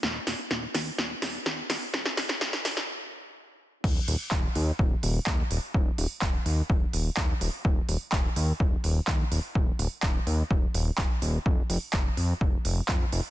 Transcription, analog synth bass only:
\new Staff \with { instrumentName = "Analog synth bass" } { \clef bass \time 4/4 \key f \dorian \tempo 4 = 126 ees,,8 ees,,8 ees,,8 ees,8 ees,,8 ees,,8 ees,8 ees,,8 | ees,,8 ees,,8 ees,,8 ees,8 r2 | ees,,8 ees,,8 ees,,8 ees,8 ees,,8 ees,,8 ees,8 ees,,8 | ees,,8 ees,,8 ees,,8 ees,8 ees,,8 ees,,8 ees,8 ees,,8 |
ees,,8 ees,,8 ees,,8 ees,8 ees,,8 ees,,8 ees,8 ees,,8 | ees,,8 ees,,8 ees,,8 ees,8 ees,,8 ees,,8 ees,,8 ees,,8 | f,,8 f,,8 f,,8 f,8 f,,8 f,,8 f,8 f,,8 | }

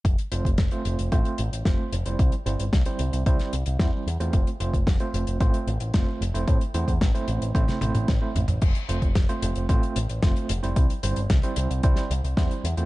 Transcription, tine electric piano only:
\new Staff \with { instrumentName = "Tine electric piano" } { \time 4/4 \key f \lydian \tempo 4 = 112 r8 <a c' f' c''>16 r8 <a c' f' c''>8. <a c' f' c''>8 r8 <a c' f' c''>8 r16 <g c' e' c''>16~ | <g c' e' c''>16 r16 <g c' e' c''>16 r8 <g c' e' c''>8. <g c' e' c''>8 r8 <g c' e' c''>8 r16 <a c' f' c''>16~ | <a c' f' c''>16 r16 <a c' f' c''>16 r8 <a c' f' c''>8. <a c' f' c''>8 r8 <a c' f' c''>8 r16 <a c' e' c''>16~ | <a c' e' c''>16 r16 <a c' e' c''>16 r8 <a c' e' c''>8. <a c' e' c''>8 <a c' e' c''>8 r16 <a c' e' c''>16 r8 |
r8 <a c' f' c''>16 r8 <a c' f' c''>8. <a c' f' c''>8 r8 <a c' f' c''>8 r16 <g c' e' c''>16~ | <g c' e' c''>16 r16 <g c' e' c''>16 r8 <g c' e' c''>8. <g c' e' c''>8 r8 <g c' e' c''>8 r16 <a c' f' c''>16 | }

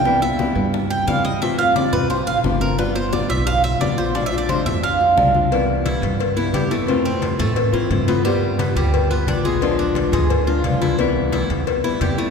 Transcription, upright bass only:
\new Staff \with { instrumentName = "Upright bass" } { \clef bass \time 4/4 \key c \major \tempo 4 = 176 c,4. g,4. f,4~ | f,4. c,4 a,,8 g,,4~ | g,,4. b,,4. bes,,4~ | bes,,4. f,4. c,4~ |
c,4. g,4. f,4~ | f,4. a,4 a,8 g,4~ | g,4. d,4. bes,,4~ | bes,,4. d,4. c,4~ |
c,4. e,4. f,4 | }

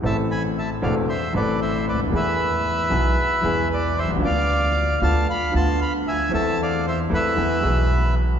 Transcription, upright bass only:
\new Staff \with { instrumentName = "Upright bass" } { \clef bass \time 4/4 \key a \minor \tempo 4 = 114 a,,4~ a,,16. r32 e,,16. r8 r32 a,,4~ a,,32 cis,32 d,32 dis,32 | e,4~ e,16. r32 b,,16. r8 r32 e,4~ e,32 b,,32 c,32 cis,32 | d,4~ d,16. r32 d,16. r8 r32 d,4~ d,16. r32 | e,4~ e,16. r32 e,16. r32 e,16. r32 b,,4~ b,,16. r32 | }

